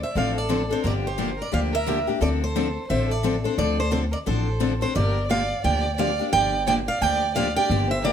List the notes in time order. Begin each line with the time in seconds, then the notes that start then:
0.02 C5 E5
0.14 A1 D3 F3 C4 D4 A4 D5 F5
0.35 A4 D5
0.49 D3 F3 C4 D4 A4
0.69 C4 D4 A4 C5
0.83 G1 D3 F3 A#3 D4 G4 A#4 D5
1.03 G4
1.07 C5
1.18 D3 F3 A#3 D4 G4
1.37 A#4
1.42 D5
1.52 D2 D3 F3 A#3 D4 G4 D5 F5
1.72 A#4 E5
1.86 D3 F3 A#3 D4 G4
2.07 A#3 D4 G4
2.20 D2 D3 F3 C4 D4 A4 D5
2.42 A4 C5
2.56 D3 F3 C4 D4 A4
2.88 A1 D3 F3 C4 D4 A4 C5 E5
3.09 A4 D5
3.23 D3 F3 C4 D4 A4
3.44 C4 D4 A4 C5
3.57 D2 D3 F3 C4 D4 A4 D5
3.77 A4 C5
3.90 D3 F3 C4 D4 A4 C5
4.11 A#4 D5
4.26 A1 D3 F3 C4 D4 A4 C5
4.60 D3 F3 C4 D4 A4
4.79 C4 D4 A4 C5
4.94 G1 D3 F3 A#3 D4 G4 A#4 D5
5.28 D3 F3 A#3 D4 G4 D5 F5
5.62 D2 D3 F3 A#3 D4 G4 D5 G5
5.97 D3 F3 A#3 D4 G4 D5 F5
6.19 A#3 D4 G4
6.32 G1 D3 F3 A#3 D4 G4 D5 G5
6.66 D3 F3 A#3 D4 G4 D5 G5
6.88 D5 F5
7.01 D2 D3 F3 A#3 D4 G4 D5 G5
7.35 D3 F3 A#3 D4 G4 D5 F5
7.56 A#3 D4 G4 D5 G5
7.70 G1 D3 F3 A#3 D4 G4
7.90 C5 E5
8.03 D3 F3 A#3 D4 G4 A#4 D5